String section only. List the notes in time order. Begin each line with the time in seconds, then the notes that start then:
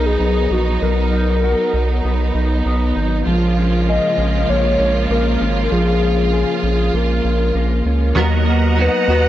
Already playing: F#3 B3 D#4
3.26 C#3 F3 G#3 A#3 F4
8.16 D#5 F#5 A#5